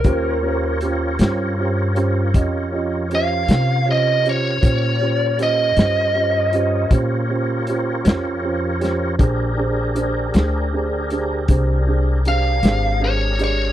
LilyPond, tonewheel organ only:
\new Staff \with { instrumentName = "Tonewheel organ" } { \time 12/8 \key ees \major \tempo 4. = 52 <f' g' bes' des''>1. | <f' g' bes' des''>1. | <d' g' aes' bes'>1. | }